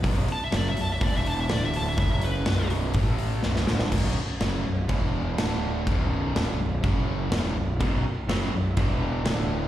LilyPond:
<<
  \new Staff \with { instrumentName = "Lead electric guitar" } { \time 4/4 \key b \minor \tempo 4 = 124 r8 a''16 e''16 d''16 e''16 a''16 e''16 d''16 e''16 a''16 e''16 d''16 e''16 a''16 e''16 | e''16 e''16 b'4 r2 r8 | r1 | r1 |
r1 | }
  \new Staff \with { instrumentName = "Overdriven electric guitar" } { \clef bass \time 4/4 \key b \minor <b,, fis, b,>8 r8 <fis, cis fis>8 <b,, fis,>8 <e, b, e>4 <d, a, d>4 | <fis, cis fis>4 <b,, fis, b,>4 <a, e a>4 <b,, fis, b,>8 <d, a, d>8 | <b,, fis, b,>8 r8 <fis, cis fis>8 <b,, fis,>8 <e, b, e>4 <d, a, d>4 | <b,, fis, b,>4 <d, a, d>8 <b,, fis,>8 <fis, cis fis>4 <e, b, e>8 <b,, fis,>8 |
<b,, fis, b,>8 r8 <fis, cis fis>8 <b,, fis,>8 <e, b, e>4 <d, a, d>4 | }
  \new Staff \with { instrumentName = "Overdriven electric guitar" } { \clef bass \time 4/4 \key b \minor <b,, fis, b,>8 r8 <fis, cis fis>8 <b,, fis,>8 <e, b, e>4 <d, a, d>4 | <fis, cis fis>4 <b,, fis, b,>4 <a, e a>4 <b,, fis, b,>8 <d, a, d>8 | <b,, fis, b,>8 r8 <fis, cis fis>8 <b,, fis,>8 <e, b, e>4 <d, a, d>4 | <b,, fis, b,>4 <d, a, d>8 <b,, fis,>8 <fis, cis fis>4 <e, b, e>8 <b,, fis,>8 |
<b,, fis, b,>8 r8 <fis, cis fis>8 <b,, fis,>8 <e, b, e>4 <d, a, d>4 | }
  \new Staff \with { instrumentName = "Overdriven electric guitar" } { \clef bass \time 4/4 \key b \minor r1 | r1 | r1 | r1 |
<b,, fis, b,>8 r8 <fis, cis fis>8 <b,, fis,>8 <e, b, e>4 <d, a, d>4 | }
  \new Staff \with { instrumentName = "Picked electric bass" } { \clef bass \time 4/4 \key b \minor b,,,8 r8 fis,,8 b,,,8 e,,4 d,,4 | fis,,4 b,,,4 a,,4 b,,,8 d,,8 | b,,,8 r8 fis,,8 b,,,8 e,,4 d,,4 | b,,,4 d,,8 b,,,8 fis,,4 e,,8 b,,,8 |
b,,,8 r8 fis,,8 b,,,8 e,,4 d,,4 | }
  \new DrumStaff \with { instrumentName = "Drums" } \drummode { \time 4/4 <hho bd>8 hho8 <hho sn>8 hho8 <hho bd>8 hho8 <hho sn>8 hho8 | <hho bd>8 hho8 <hho sn>8 hho8 <hho bd>8 hho8 sn16 sn16 sn16 sn16 | <cymc bd>4 <cymc sn>4 <cymc bd>4 <cymc sn>4 | <cymc bd>4 <cymc sn>4 <cymc bd>4 <cymc sn>4 |
<cymc bd>4 <cymc sn>4 <cymc bd>4 <cymc sn>4 | }
>>